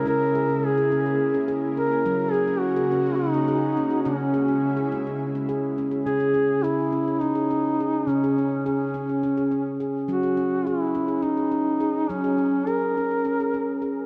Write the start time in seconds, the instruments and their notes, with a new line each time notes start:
Already playing: ambient pad C#3 E4
0.05 handpan C#3 C#4, ambient pad A#3, duduk A#4
0.35 handpan G#4
0.49 handpan C#4
0.65 duduk G#4
0.78 handpan G#4
0.92 handpan C#4
1.06 handpan G#4
1.34 handpan C#4
1.48 handpan G#4
1.76 handpan C#4, duduk A#4
1.92 handpan G#4
2.06 ambient pad C#3 F#4, handpan F#3 C#4
2.32 duduk G#4, handpan G#4
2.47 handpan C#4
2.59 duduk F#4
2.76 handpan G#4
2.92 handpan C#4
3.06 handpan G#4
3.15 duduk D#4
3.34 handpan C#4
3.48 handpan G#4
3.77 handpan C#4
3.91 handpan G#4
4.02 handpan C#3 C#4, duduk C#4, ambient pad E4
4.06 ambient pad G#3
4.34 handpan G#4
4.48 handpan C#4
4.77 handpan G#4
4.92 handpan C#4
5.07 handpan G#4
5.35 handpan C#4
5.49 handpan G#4
5.78 handpan C#4
5.91 handpan G#4
6.05 handpan C#3 C#4, duduk G#4
6.20 handpan G#4
6.34 handpan C#4
6.63 duduk E4, handpan G#4
6.92 handpan C#4
7.08 handpan G#4
7.20 handpan C#4, duduk D#4
7.35 handpan G#4
7.51 handpan C#4
7.80 handpan G#4
8.07 handpan C#3 C#4, duduk C#4
8.24 handpan G#4
8.38 handpan C#4
8.66 duduk C#4, handpan G#4
8.94 handpan C#4
9.09 handpan G#4
9.23 handpan C#4
9.37 handpan G#4
9.51 handpan C#4
9.80 handpan G#4
10.08 handpan F#3 C#4, duduk F#4
10.23 handpan G#4
10.37 handpan C#4
10.67 duduk E4, handpan G#4
10.95 handpan C#4
11.08 handpan G#4
11.23 handpan C#4, duduk D#4
11.37 handpan G#4
11.52 handpan C#4
11.80 handpan G#4
12.09 handpan F#3 C#4, duduk C#4
12.24 handpan G#4
12.38 handpan C#4
12.66 handpan G#4, duduk A#4
12.97 handpan C#4
13.11 handpan G#4
13.25 handpan C#4
13.40 handpan G#4
13.54 handpan C#4
13.82 handpan G#4